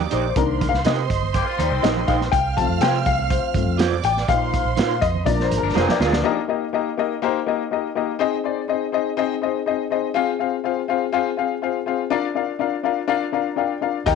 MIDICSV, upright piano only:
0, 0, Header, 1, 2, 480
1, 0, Start_track
1, 0, Key_signature, -3, "major"
1, 0, Tempo, 489396
1, 357, Time_signature, 4, 2, 24, 8
1, 13879, End_track
2, 0, Start_track
2, 0, Title_t, "Upright piano"
2, 0, Program_c, 0, 0
2, 0, Note_on_c, 0, 55, 57
2, 0, Note_on_c, 0, 58, 51
2, 0, Note_on_c, 0, 63, 60
2, 120, Note_on_c, 0, 72, 80
2, 274, Note_off_c, 0, 72, 0
2, 288, Note_on_c, 0, 72, 67
2, 313, Note_off_c, 0, 55, 0
2, 315, Note_off_c, 0, 58, 0
2, 320, Note_off_c, 0, 63, 0
2, 355, Note_on_c, 0, 51, 58
2, 357, Note_off_c, 0, 72, 0
2, 360, Note_on_c, 0, 58, 53
2, 362, Note_on_c, 0, 70, 93
2, 366, Note_on_c, 0, 62, 63
2, 675, Note_on_c, 0, 77, 96
2, 676, Note_off_c, 0, 51, 0
2, 679, Note_off_c, 0, 58, 0
2, 682, Note_off_c, 0, 62, 0
2, 690, Note_off_c, 0, 70, 0
2, 841, Note_off_c, 0, 77, 0
2, 844, Note_on_c, 0, 75, 87
2, 1289, Note_off_c, 0, 75, 0
2, 1564, Note_on_c, 0, 72, 77
2, 1796, Note_on_c, 0, 75, 86
2, 1809, Note_off_c, 0, 72, 0
2, 2037, Note_on_c, 0, 77, 87
2, 2046, Note_off_c, 0, 75, 0
2, 2091, Note_off_c, 0, 77, 0
2, 2272, Note_on_c, 0, 79, 107
2, 2500, Note_off_c, 0, 79, 0
2, 2520, Note_on_c, 0, 81, 98
2, 2522, Note_on_c, 0, 53, 56
2, 2529, Note_on_c, 0, 57, 52
2, 2532, Note_on_c, 0, 60, 61
2, 2761, Note_on_c, 0, 79, 101
2, 2769, Note_off_c, 0, 81, 0
2, 2985, Note_off_c, 0, 79, 0
2, 3002, Note_on_c, 0, 77, 99
2, 3226, Note_off_c, 0, 77, 0
2, 3239, Note_on_c, 0, 72, 75
2, 3465, Note_off_c, 0, 72, 0
2, 3466, Note_off_c, 0, 53, 0
2, 3472, Note_off_c, 0, 57, 0
2, 3475, Note_off_c, 0, 60, 0
2, 3481, Note_on_c, 0, 53, 52
2, 3487, Note_on_c, 0, 57, 45
2, 3490, Note_on_c, 0, 60, 55
2, 3699, Note_off_c, 0, 53, 0
2, 3702, Note_off_c, 0, 57, 0
2, 3704, Note_off_c, 0, 60, 0
2, 3969, Note_on_c, 0, 79, 102
2, 4199, Note_on_c, 0, 53, 60
2, 4205, Note_on_c, 0, 58, 53
2, 4205, Note_on_c, 0, 77, 111
2, 4212, Note_on_c, 0, 63, 65
2, 4215, Note_off_c, 0, 79, 0
2, 4522, Note_off_c, 0, 53, 0
2, 4525, Note_off_c, 0, 58, 0
2, 4529, Note_off_c, 0, 63, 0
2, 4918, Note_on_c, 0, 75, 101
2, 4948, Note_off_c, 0, 77, 0
2, 5152, Note_on_c, 0, 53, 59
2, 5156, Note_on_c, 0, 58, 55
2, 5158, Note_on_c, 0, 74, 95
2, 5164, Note_on_c, 0, 62, 63
2, 5170, Note_off_c, 0, 75, 0
2, 5311, Note_off_c, 0, 74, 0
2, 5314, Note_on_c, 0, 72, 84
2, 5475, Note_on_c, 0, 70, 79
2, 5486, Note_off_c, 0, 72, 0
2, 5643, Note_on_c, 0, 72, 86
2, 5647, Note_off_c, 0, 70, 0
2, 5794, Note_off_c, 0, 72, 0
2, 5803, Note_on_c, 0, 74, 76
2, 6081, Note_off_c, 0, 53, 0
2, 6084, Note_off_c, 0, 58, 0
2, 6087, Note_off_c, 0, 62, 0
2, 6103, Note_off_c, 0, 74, 0
2, 6118, Note_on_c, 0, 58, 100
2, 6122, Note_on_c, 0, 63, 91
2, 6128, Note_on_c, 0, 67, 86
2, 6128, Note_on_c, 0, 70, 91
2, 6132, Note_on_c, 0, 75, 110
2, 6266, Note_off_c, 0, 58, 0
2, 6268, Note_off_c, 0, 63, 0
2, 6271, Note_off_c, 0, 67, 0
2, 6271, Note_off_c, 0, 70, 0
2, 6273, Note_off_c, 0, 75, 0
2, 6356, Note_on_c, 0, 58, 88
2, 6362, Note_on_c, 0, 63, 81
2, 6366, Note_on_c, 0, 67, 82
2, 6368, Note_on_c, 0, 70, 83
2, 6371, Note_on_c, 0, 75, 95
2, 6506, Note_off_c, 0, 58, 0
2, 6509, Note_off_c, 0, 63, 0
2, 6510, Note_off_c, 0, 67, 0
2, 6512, Note_off_c, 0, 70, 0
2, 6513, Note_off_c, 0, 75, 0
2, 6599, Note_on_c, 0, 58, 93
2, 6605, Note_on_c, 0, 63, 81
2, 6607, Note_on_c, 0, 67, 85
2, 6614, Note_on_c, 0, 70, 86
2, 6615, Note_on_c, 0, 75, 100
2, 6747, Note_off_c, 0, 58, 0
2, 6750, Note_off_c, 0, 63, 0
2, 6751, Note_off_c, 0, 67, 0
2, 6754, Note_off_c, 0, 70, 0
2, 6755, Note_off_c, 0, 75, 0
2, 6841, Note_on_c, 0, 58, 100
2, 6844, Note_on_c, 0, 63, 84
2, 6850, Note_on_c, 0, 67, 89
2, 6855, Note_on_c, 0, 70, 90
2, 6859, Note_on_c, 0, 75, 113
2, 6988, Note_off_c, 0, 58, 0
2, 6989, Note_off_c, 0, 63, 0
2, 6993, Note_off_c, 0, 67, 0
2, 6995, Note_off_c, 0, 70, 0
2, 6997, Note_off_c, 0, 75, 0
2, 7082, Note_on_c, 0, 58, 120
2, 7090, Note_on_c, 0, 67, 107
2, 7091, Note_on_c, 0, 63, 111
2, 7097, Note_on_c, 0, 70, 112
2, 7100, Note_on_c, 0, 72, 127
2, 7229, Note_off_c, 0, 58, 0
2, 7233, Note_off_c, 0, 63, 0
2, 7233, Note_off_c, 0, 67, 0
2, 7236, Note_off_c, 0, 70, 0
2, 7238, Note_off_c, 0, 72, 0
2, 7321, Note_on_c, 0, 58, 95
2, 7326, Note_on_c, 0, 63, 86
2, 7330, Note_on_c, 0, 67, 85
2, 7337, Note_on_c, 0, 70, 83
2, 7340, Note_on_c, 0, 75, 105
2, 7468, Note_off_c, 0, 58, 0
2, 7470, Note_off_c, 0, 63, 0
2, 7473, Note_off_c, 0, 67, 0
2, 7476, Note_off_c, 0, 70, 0
2, 7477, Note_off_c, 0, 75, 0
2, 7562, Note_on_c, 0, 58, 88
2, 7566, Note_on_c, 0, 63, 80
2, 7570, Note_on_c, 0, 67, 82
2, 7576, Note_on_c, 0, 70, 83
2, 7581, Note_on_c, 0, 75, 102
2, 7708, Note_off_c, 0, 58, 0
2, 7710, Note_off_c, 0, 63, 0
2, 7712, Note_off_c, 0, 67, 0
2, 7716, Note_off_c, 0, 70, 0
2, 7718, Note_off_c, 0, 75, 0
2, 7801, Note_on_c, 0, 58, 91
2, 7805, Note_on_c, 0, 63, 85
2, 7809, Note_on_c, 0, 67, 85
2, 7815, Note_on_c, 0, 70, 80
2, 7817, Note_on_c, 0, 75, 100
2, 7948, Note_off_c, 0, 58, 0
2, 7950, Note_off_c, 0, 63, 0
2, 7952, Note_off_c, 0, 67, 0
2, 7955, Note_off_c, 0, 70, 0
2, 7956, Note_off_c, 0, 75, 0
2, 8033, Note_on_c, 0, 60, 125
2, 8038, Note_on_c, 0, 63, 109
2, 8042, Note_on_c, 0, 68, 111
2, 8045, Note_on_c, 0, 72, 115
2, 8052, Note_on_c, 0, 75, 127
2, 8184, Note_off_c, 0, 60, 0
2, 8186, Note_off_c, 0, 63, 0
2, 8189, Note_off_c, 0, 68, 0
2, 8190, Note_off_c, 0, 72, 0
2, 8193, Note_off_c, 0, 75, 0
2, 8275, Note_on_c, 0, 60, 88
2, 8279, Note_on_c, 0, 63, 86
2, 8282, Note_on_c, 0, 68, 82
2, 8286, Note_on_c, 0, 72, 85
2, 8291, Note_on_c, 0, 74, 102
2, 8425, Note_off_c, 0, 60, 0
2, 8427, Note_off_c, 0, 63, 0
2, 8428, Note_off_c, 0, 68, 0
2, 8430, Note_off_c, 0, 72, 0
2, 8433, Note_off_c, 0, 74, 0
2, 8512, Note_on_c, 0, 60, 92
2, 8516, Note_on_c, 0, 63, 85
2, 8521, Note_on_c, 0, 68, 86
2, 8525, Note_on_c, 0, 72, 85
2, 8528, Note_on_c, 0, 75, 104
2, 8663, Note_off_c, 0, 60, 0
2, 8665, Note_off_c, 0, 63, 0
2, 8668, Note_off_c, 0, 68, 0
2, 8670, Note_off_c, 0, 72, 0
2, 8671, Note_off_c, 0, 75, 0
2, 8750, Note_on_c, 0, 60, 99
2, 8757, Note_on_c, 0, 63, 93
2, 8760, Note_on_c, 0, 68, 96
2, 8763, Note_on_c, 0, 72, 92
2, 8769, Note_on_c, 0, 75, 112
2, 8902, Note_off_c, 0, 60, 0
2, 8905, Note_off_c, 0, 63, 0
2, 8907, Note_off_c, 0, 68, 0
2, 8909, Note_off_c, 0, 72, 0
2, 8912, Note_off_c, 0, 75, 0
2, 8993, Note_on_c, 0, 60, 126
2, 8995, Note_on_c, 0, 63, 107
2, 9000, Note_on_c, 0, 68, 106
2, 9006, Note_on_c, 0, 72, 111
2, 9011, Note_on_c, 0, 75, 127
2, 9143, Note_off_c, 0, 60, 0
2, 9144, Note_off_c, 0, 63, 0
2, 9147, Note_off_c, 0, 68, 0
2, 9150, Note_off_c, 0, 72, 0
2, 9153, Note_off_c, 0, 75, 0
2, 9235, Note_on_c, 0, 60, 98
2, 9239, Note_on_c, 0, 63, 89
2, 9247, Note_on_c, 0, 68, 89
2, 9251, Note_on_c, 0, 72, 84
2, 9252, Note_on_c, 0, 75, 108
2, 9384, Note_off_c, 0, 60, 0
2, 9386, Note_off_c, 0, 63, 0
2, 9390, Note_off_c, 0, 68, 0
2, 9392, Note_off_c, 0, 72, 0
2, 9393, Note_off_c, 0, 75, 0
2, 9475, Note_on_c, 0, 60, 95
2, 9477, Note_on_c, 0, 63, 88
2, 9481, Note_on_c, 0, 68, 84
2, 9486, Note_on_c, 0, 72, 87
2, 9489, Note_on_c, 0, 75, 104
2, 9624, Note_off_c, 0, 60, 0
2, 9625, Note_off_c, 0, 63, 0
2, 9627, Note_off_c, 0, 68, 0
2, 9630, Note_off_c, 0, 72, 0
2, 9631, Note_off_c, 0, 75, 0
2, 9713, Note_on_c, 0, 60, 91
2, 9721, Note_on_c, 0, 63, 85
2, 9722, Note_on_c, 0, 68, 84
2, 9728, Note_on_c, 0, 72, 84
2, 9728, Note_on_c, 0, 75, 106
2, 9863, Note_off_c, 0, 60, 0
2, 9867, Note_off_c, 0, 63, 0
2, 9867, Note_off_c, 0, 68, 0
2, 9870, Note_off_c, 0, 72, 0
2, 9870, Note_off_c, 0, 75, 0
2, 9947, Note_on_c, 0, 60, 124
2, 9951, Note_on_c, 0, 65, 113
2, 9957, Note_on_c, 0, 68, 112
2, 9960, Note_on_c, 0, 72, 111
2, 9964, Note_on_c, 0, 77, 127
2, 10100, Note_off_c, 0, 60, 0
2, 10102, Note_off_c, 0, 65, 0
2, 10105, Note_off_c, 0, 68, 0
2, 10106, Note_off_c, 0, 72, 0
2, 10108, Note_off_c, 0, 77, 0
2, 10190, Note_on_c, 0, 60, 92
2, 10193, Note_on_c, 0, 65, 81
2, 10196, Note_on_c, 0, 68, 85
2, 10202, Note_on_c, 0, 72, 83
2, 10206, Note_on_c, 0, 77, 102
2, 10341, Note_off_c, 0, 60, 0
2, 10342, Note_off_c, 0, 65, 0
2, 10344, Note_off_c, 0, 68, 0
2, 10347, Note_off_c, 0, 72, 0
2, 10349, Note_off_c, 0, 77, 0
2, 10433, Note_on_c, 0, 60, 93
2, 10436, Note_on_c, 0, 65, 84
2, 10440, Note_on_c, 0, 68, 87
2, 10447, Note_on_c, 0, 72, 85
2, 10449, Note_on_c, 0, 77, 104
2, 10582, Note_off_c, 0, 60, 0
2, 10584, Note_off_c, 0, 65, 0
2, 10586, Note_off_c, 0, 68, 0
2, 10589, Note_off_c, 0, 72, 0
2, 10591, Note_off_c, 0, 77, 0
2, 10673, Note_on_c, 0, 60, 99
2, 10675, Note_on_c, 0, 65, 88
2, 10678, Note_on_c, 0, 68, 90
2, 10685, Note_on_c, 0, 72, 89
2, 10687, Note_on_c, 0, 77, 109
2, 10822, Note_off_c, 0, 60, 0
2, 10823, Note_off_c, 0, 65, 0
2, 10824, Note_off_c, 0, 68, 0
2, 10828, Note_off_c, 0, 72, 0
2, 10829, Note_off_c, 0, 77, 0
2, 10910, Note_on_c, 0, 60, 118
2, 10914, Note_on_c, 0, 65, 108
2, 10915, Note_on_c, 0, 68, 117
2, 10922, Note_on_c, 0, 72, 114
2, 10926, Note_on_c, 0, 77, 127
2, 11060, Note_off_c, 0, 60, 0
2, 11062, Note_off_c, 0, 65, 0
2, 11063, Note_off_c, 0, 68, 0
2, 11066, Note_off_c, 0, 72, 0
2, 11069, Note_off_c, 0, 77, 0
2, 11151, Note_on_c, 0, 60, 93
2, 11153, Note_on_c, 0, 65, 87
2, 11160, Note_on_c, 0, 68, 86
2, 11166, Note_on_c, 0, 72, 83
2, 11169, Note_on_c, 0, 77, 103
2, 11300, Note_off_c, 0, 60, 0
2, 11302, Note_off_c, 0, 65, 0
2, 11305, Note_off_c, 0, 68, 0
2, 11308, Note_off_c, 0, 72, 0
2, 11309, Note_off_c, 0, 77, 0
2, 11396, Note_on_c, 0, 60, 89
2, 11400, Note_on_c, 0, 65, 86
2, 11404, Note_on_c, 0, 68, 84
2, 11408, Note_on_c, 0, 72, 80
2, 11412, Note_on_c, 0, 77, 101
2, 11543, Note_off_c, 0, 60, 0
2, 11545, Note_off_c, 0, 65, 0
2, 11547, Note_off_c, 0, 68, 0
2, 11549, Note_off_c, 0, 72, 0
2, 11551, Note_off_c, 0, 77, 0
2, 11631, Note_on_c, 0, 60, 88
2, 11637, Note_on_c, 0, 65, 85
2, 11640, Note_on_c, 0, 68, 84
2, 11643, Note_on_c, 0, 72, 82
2, 11649, Note_on_c, 0, 77, 100
2, 11780, Note_off_c, 0, 60, 0
2, 11783, Note_off_c, 0, 65, 0
2, 11785, Note_off_c, 0, 68, 0
2, 11786, Note_off_c, 0, 72, 0
2, 11789, Note_off_c, 0, 77, 0
2, 11871, Note_on_c, 0, 62, 122
2, 11874, Note_on_c, 0, 65, 108
2, 11879, Note_on_c, 0, 70, 113
2, 11883, Note_on_c, 0, 74, 113
2, 11888, Note_on_c, 0, 77, 127
2, 12020, Note_off_c, 0, 62, 0
2, 12021, Note_off_c, 0, 65, 0
2, 12024, Note_off_c, 0, 70, 0
2, 12026, Note_off_c, 0, 74, 0
2, 12028, Note_off_c, 0, 77, 0
2, 12112, Note_on_c, 0, 62, 89
2, 12114, Note_on_c, 0, 65, 80
2, 12117, Note_on_c, 0, 70, 80
2, 12121, Note_on_c, 0, 74, 83
2, 12127, Note_on_c, 0, 77, 102
2, 12260, Note_off_c, 0, 62, 0
2, 12261, Note_off_c, 0, 65, 0
2, 12262, Note_off_c, 0, 70, 0
2, 12265, Note_off_c, 0, 74, 0
2, 12268, Note_off_c, 0, 77, 0
2, 12349, Note_on_c, 0, 62, 96
2, 12352, Note_on_c, 0, 65, 81
2, 12358, Note_on_c, 0, 70, 84
2, 12360, Note_on_c, 0, 74, 88
2, 12366, Note_on_c, 0, 77, 100
2, 12498, Note_off_c, 0, 62, 0
2, 12500, Note_off_c, 0, 65, 0
2, 12502, Note_off_c, 0, 70, 0
2, 12504, Note_off_c, 0, 74, 0
2, 12507, Note_off_c, 0, 77, 0
2, 12588, Note_on_c, 0, 62, 93
2, 12594, Note_on_c, 0, 65, 92
2, 12599, Note_on_c, 0, 70, 93
2, 12603, Note_on_c, 0, 74, 87
2, 12607, Note_on_c, 0, 77, 105
2, 12737, Note_off_c, 0, 62, 0
2, 12740, Note_off_c, 0, 65, 0
2, 12743, Note_off_c, 0, 70, 0
2, 12745, Note_off_c, 0, 74, 0
2, 12747, Note_off_c, 0, 77, 0
2, 12825, Note_on_c, 0, 62, 121
2, 12825, Note_on_c, 0, 65, 109
2, 12830, Note_on_c, 0, 70, 107
2, 12833, Note_on_c, 0, 74, 104
2, 12840, Note_on_c, 0, 77, 127
2, 12976, Note_off_c, 0, 62, 0
2, 12976, Note_off_c, 0, 65, 0
2, 12978, Note_off_c, 0, 70, 0
2, 12980, Note_off_c, 0, 74, 0
2, 12983, Note_off_c, 0, 77, 0
2, 13067, Note_on_c, 0, 62, 93
2, 13069, Note_on_c, 0, 65, 81
2, 13075, Note_on_c, 0, 70, 84
2, 13075, Note_on_c, 0, 82, 76
2, 13079, Note_on_c, 0, 74, 83
2, 13083, Note_on_c, 0, 77, 105
2, 13217, Note_off_c, 0, 62, 0
2, 13217, Note_off_c, 0, 65, 0
2, 13220, Note_off_c, 0, 70, 0
2, 13222, Note_off_c, 0, 74, 0
2, 13224, Note_off_c, 0, 77, 0
2, 13300, Note_off_c, 0, 82, 0
2, 13300, Note_on_c, 0, 62, 89
2, 13306, Note_on_c, 0, 65, 84
2, 13312, Note_on_c, 0, 79, 78
2, 13313, Note_on_c, 0, 70, 81
2, 13314, Note_on_c, 0, 74, 83
2, 13320, Note_on_c, 0, 77, 100
2, 13453, Note_off_c, 0, 62, 0
2, 13455, Note_off_c, 0, 65, 0
2, 13459, Note_off_c, 0, 70, 0
2, 13460, Note_off_c, 0, 74, 0
2, 13462, Note_off_c, 0, 77, 0
2, 13538, Note_off_c, 0, 79, 0
2, 13546, Note_on_c, 0, 62, 87
2, 13552, Note_on_c, 0, 65, 78
2, 13556, Note_on_c, 0, 70, 80
2, 13556, Note_on_c, 0, 77, 103
2, 13560, Note_on_c, 0, 74, 85
2, 13695, Note_off_c, 0, 62, 0
2, 13698, Note_off_c, 0, 65, 0
2, 13700, Note_off_c, 0, 70, 0
2, 13702, Note_off_c, 0, 74, 0
2, 13703, Note_off_c, 0, 77, 0
2, 13789, Note_on_c, 0, 63, 124
2, 13792, Note_on_c, 0, 67, 110
2, 13796, Note_on_c, 0, 70, 108
2, 13798, Note_on_c, 0, 75, 110
2, 13805, Note_on_c, 0, 79, 127
2, 13879, Note_off_c, 0, 63, 0
2, 13879, Note_off_c, 0, 67, 0
2, 13879, Note_off_c, 0, 70, 0
2, 13879, Note_off_c, 0, 75, 0
2, 13879, Note_off_c, 0, 79, 0
2, 13879, End_track
0, 0, End_of_file